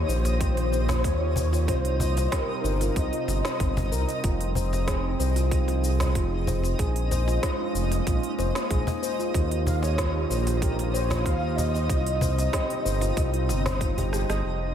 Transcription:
Already playing: ambient pad D#3 A#3 F4 G4, synth texture D#4 D#5
0.08 analog synth bass A#1, handpan C5, soft synth lead C5, shaker
0.25 cajon slap, open hi-hat, shaker
0.40 handpan G4, kick, open hi-hat, shaker
0.57 cajon slap, open hi-hat
0.72 handpan C5, shaker
0.89 handpan F4, cajon bass, snare, shaker
1.04 analog synth bass D#2, soft synth lead C#5, kick, open hi-hat, shaker
1.21 handpan F4
1.36 cajon bass, shaker
1.52 handpan F4, cajon slap, shaker
1.68 analog synth bass C2, ambient pad C3 G3 C4 D#4, handpan F4, soft synth lead C5, kick, open hi-hat, shaker
1.85 open hi-hat
2.00 handpan C5, cajon bass, shaker
2.17 cajon slap, open hi-hat, shaker
2.32 handpan G4, soft synth lead A#4, kick, snare, open hi-hat, shaker
2.64 analog synth bass G1, handpan C5, shaker
2.81 handpan F4, cajon slap, open hi-hat, shaker
2.96 analog synth bass C2, soft synth lead D#5, kick, open hi-hat, shaker
3.12 handpan F4, open hi-hat
3.28 analog synth bass G1, cajon slap, shaker
3.44 handpan C5, snare, shaker
3.60 analog synth bass G1, handpan C4, kick, open hi-hat, shaker
3.77 cajon bass
3.92 analog synth bass C2, handpan A#4, shaker
4.08 handpan D#5, open hi-hat, shaker
4.23 analog synth bass F1, ambient pad F3 G#4 G5, handpan F4, kick, open hi-hat, shaker
4.41 open hi-hat
4.55 handpan C5, cajon bass, shaker
4.73 cajon slap, shaker
4.87 handpan G#4, kick, snare, open hi-hat, shaker
5.19 analog synth bass C2, handpan C5, shaker
5.36 handpan F4, cajon slap, open hi-hat, shaker
5.51 handpan F4, kick, open hi-hat, shaker
5.68 handpan F4, cajon slap, open hi-hat
5.84 shaker
6.00 cajon bass, snare, shaker
6.15 analog synth bass F1, handpan F4, kick, open hi-hat, shaker
6.47 handpan C5, cajon bass, shaker
6.63 cajon slap, shaker
6.79 analog synth bass A#1, ambient pad G#3 A#3 C#4, handpan G#4, kick, open hi-hat, shaker
6.96 open hi-hat
7.11 handpan C5, cajon bass, shaker
7.27 handpan F4, cajon slap, shaker
7.43 handpan F4, kick, snare, open hi-hat, shaker
7.59 handpan F4
7.75 analog synth bass F1, shaker
7.91 cajon slap, open hi-hat, shaker
8.07 analog synth bass A#1, handpan F4, kick, open hi-hat, shaker
8.23 open hi-hat
8.39 analog synth bass F1, handpan C5, cajon slap, shaker
8.55 snare, shaker
8.70 analog synth bass A#1, handpan G#4, kick, open hi-hat, shaker
8.87 cajon bass
9.02 handpan C5, shaker
9.19 handpan F4, shaker
9.34 analog synth bass D#2, ambient pad D#3 F4 G4, handpan F4, kick, open hi-hat, shaker
9.51 handpan F4, open hi-hat
9.65 soft synth lead F5, cajon bass, shaker
9.82 soft synth lead C#5, cajon slap, shaker
9.98 handpan F4, kick, snare, open hi-hat, shaker
10.23 soft synth lead C#5
10.29 analog synth bass A#1, soft synth lead C5, handpan C5, shaker
10.47 cajon slap, open hi-hat, shaker
10.61 handpan G4, soft synth lead A#4, kick, open hi-hat, shaker
10.79 cajon slap, open hi-hat
10.93 handpan C5, soft synth lead C#5, shaker
11.10 handpan F4, cajon bass, snare, shaker
11.25 analog synth bass D#2, handpan F4, soft synth lead F5, kick, open hi-hat, shaker
11.42 handpan F4
11.56 soft synth lead D#5, cajon bass, shaker
11.74 cajon slap, shaker
11.89 analog synth bass C2, ambient pad C3 G3 C4 D#4, handpan F4, kick, open hi-hat, shaker
12.07 open hi-hat
12.21 handpan C5, cajon bass, shaker
12.38 cajon slap, open hi-hat, shaker
12.53 handpan G4, kick, snare, open hi-hat, shaker
12.70 open hi-hat
12.85 analog synth bass G1, handpan C5, shaker
13.01 handpan F4, cajon slap, open hi-hat, shaker
13.17 analog synth bass C2, handpan F4, kick, open hi-hat, shaker
13.34 handpan F4, open hi-hat
13.49 analog synth bass G1, cajon slap, shaker
13.66 handpan C5, cajon bass, snare, shaker
13.81 handpan F4, kick, open hi-hat, shaker
13.98 handpan G4, cajon bass, open hi-hat
14.13 handpan G4, cross-stick, shaker
14.29 analog synth bass G1, handpan D#5, cross-stick, cajon slap, open hi-hat, shaker
14.44 analog synth bass F1, ambient pad C3 F3 G4 G#4, synth texture D#4 C6, shaker

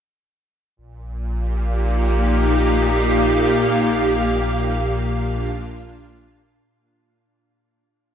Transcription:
0.76 sub bass A#1, ambient pad A#2
1.09 ambient pad A#3
1.33 ambient pad G4
1.66 ambient pad D#4
2.08 ambient pad F5
3.71 sub bass A#1
5.01 ambient pad D4 F4

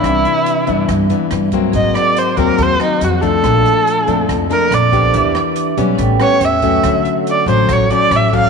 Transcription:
Already playing: nylon-string guitar E3 B3 D4, erhu E4
0.00 upright bass C2, nylon-string guitar C3, vibraphone D4 B4, kick, cross-stick, closed hi-hat
0.05 vibraphone C4 E5
0.25 closed hi-hat
0.46 closed hi-hat
0.67 upright bass G2, nylon-string guitar E3 B3 D4, closed hi-hat
0.88 nylon-string guitar G2, upright bass G2, kick, cross-stick, closed hi-hat
1.10 nylon-string guitar E3 B3 D4, closed hi-hat
1.31 upright bass G2, cross-stick, closed hi-hat
1.52 nylon-string guitar F#3 A#3 C4, kick, closed hi-hat
1.70 upright bass G#1, vibraphone C4 G#4, kick, closed hi-hat
1.74 nylon-string guitar G#2, vibraphone A#4 F#5, erhu D#5
1.95 erhu D5, cross-stick, closed hi-hat
2.17 erhu C5, closed hi-hat
2.37 upright bass D#2, nylon-string guitar F#3 A#3 C4, erhu A#4, kick, closed hi-hat
2.58 upright bass D#2, nylon-string guitar D#3, kick, closed hi-hat
2.63 erhu C5
2.80 nylon-string guitar F#3 A#3 C4, erhu D#4, cross-stick, closed hi-hat
3.01 upright bass F2, erhu F#4, closed hi-hat
3.21 nylon-string guitar F3 A3 D4, vibraphone C4 G#4 A#4 F#5, erhu A4, kick, closed hi-hat
3.40 upright bass A#1, nylon-string guitar A#2, vibraphone A#3 D4 A4, kick, cross-stick, closed hi-hat
3.46 vibraphone F5
3.66 closed hi-hat
3.87 closed hi-hat
4.07 upright bass F2, nylon-string guitar F3 A3 D4, closed hi-hat
4.28 nylon-string guitar F2, upright bass F2, kick, cross-stick, closed hi-hat
4.49 nylon-string guitar F3 A3 D4, erhu A#4, closed hi-hat
4.71 upright bass A#1, erhu D5, cross-stick, closed hi-hat
4.91 nylon-string guitar B3 D4 G4, vibraphone D4 A4 A#4 C5, kick, closed hi-hat
5.11 upright bass E2, nylon-string guitar E3, vibraphone D4 G4, kick, closed hi-hat
5.15 vibraphone B4 E5
5.35 cross-stick, closed hi-hat
5.56 closed hi-hat
5.77 upright bass B1, nylon-string guitar G3 B3 C#4, closed hi-hat
5.95 upright bass A1, vibraphone C#4 A4 B4, kick, closed hi-hat
5.99 nylon-string guitar A2, vibraphone G5
6.20 nylon-string guitar G3 B3 C#4, erhu C#5, cross-stick, closed hi-hat
6.40 upright bass E2, closed hi-hat
6.45 erhu E5
6.62 nylon-string guitar F#3 A3 C#4, kick, closed hi-hat
6.83 upright bass D2, nylon-string guitar D3, vibraphone A4 C#5 F#5, kick, cross-stick, closed hi-hat
7.05 closed hi-hat
7.27 erhu D5, closed hi-hat
7.46 upright bass A1, nylon-string guitar F#3 A3 C#4, erhu C5, closed hi-hat
7.69 upright bass A1, nylon-string guitar A2, erhu C#5, kick, cross-stick, closed hi-hat
7.90 nylon-string guitar F#3 A3 C#4, erhu D5, closed hi-hat
8.11 upright bass A1, cross-stick, closed hi-hat
8.16 erhu E5
8.33 nylon-string guitar F#3 A3 C#4, erhu F5, kick, closed hi-hat

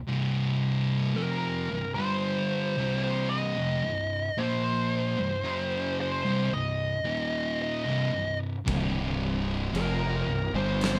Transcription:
0.07 distorted electric guitar C2 G2 C3
1.15 distorted electric guitar F2 C3 F3, lead electric guitar A#4
1.70 distorted electric guitar C2 G2
1.95 distorted electric guitar G2 D3 G3, lead electric guitar C5
2.77 distorted electric guitar C2 G2 C3
3.03 lead electric guitar C5
3.29 lead electric guitar D#5
3.57 distorted electric guitar F2 C3
3.84 distorted electric guitar C2 G2
4.37 distorted electric guitar A#2 F3 A#3, lead electric guitar C5
5.17 distorted electric guitar C2 G2
5.44 distorted electric guitar F#2 C#3 F#3
6.01 lead electric guitar C5
6.25 distorted electric guitar C2 G2
6.51 distorted electric guitar C2 G2, lead electric guitar D#5
7.04 distorted electric guitar D#2 A#2 D#3
7.62 lead electric guitar D#5
7.85 distorted electric guitar C2 G2
8.12 distorted electric guitar C2 G2
8.65 fingered electric bass C1, distorted electric guitar C2 G2 C3, kick, crash
9.73 fingered electric bass F1, distorted electric guitar F2 C3 F3, lead electric guitar A#4, crash
10.27 fingered electric bass C1, distorted electric guitar C2 G2
10.53 fingered electric bass G1, distorted electric guitar G2 D3 G3, lead electric guitar C5
10.81 lead electric guitar C5, snare, crash

